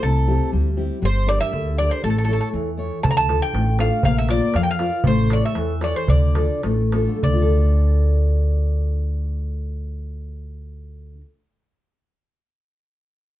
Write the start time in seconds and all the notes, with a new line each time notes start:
0.03 C2 C3 A4
0.28 C4 E4 G4
0.52 D2 G3
0.77 C4 E4 G4
1.02 G1 G3 C5
1.27 D4 G4 A#4 D5
1.41 E5
1.53 D2 D3
1.78 D4 G4 A#4 D5
1.91 C5
2.04 A1 A3 A4
2.10 A4
2.18 A4
2.25 E4 A4
2.29 C#5
2.33 A4
2.41 A4
2.53 E2 E3
2.77 E4 A4 C#5
3.03 D2 D3 A5, darbuka dum
3.11 A#5
3.17 A5
3.29 D4 F4 A4, darbuka tek
3.42 G5, darbuka tek
3.53 A1 A3, darbuka tek
3.79 D4 F4 A4 F5, darbuka tek
4.03 A#1 A#3 F5, darbuka dum
4.18 E5
4.29 F4 A#4 D5, darbuka tek
4.42 darbuka tek
4.54 F2 F3 F5, darbuka tek
4.63 G5, darbuka tek
4.71 F5
4.79 F4 A#4 D5, darbuka tek
4.91 darbuka tek
5.04 A1 A3 C5, darbuka dum
5.30 E4 A4 C#5 D5, darbuka tek
5.43 E5, darbuka tek
5.55 E2 E3, darbuka tek
5.68 darbuka tek
5.81 E4 A4 C#5 D5, darbuka tek
5.94 C5, darbuka tek
6.07 D2 D3 D5, darbuka dum
6.35 D4 F4 A4, darbuka tek
6.63 A1 A3, darbuka tek
6.78 darbuka tek
6.92 D4 F4 A4, darbuka tek
7.07 D3, darbuka tek
7.16 A3
7.23 D2 D4 D5, darbuka dum
7.33 F4
7.42 A4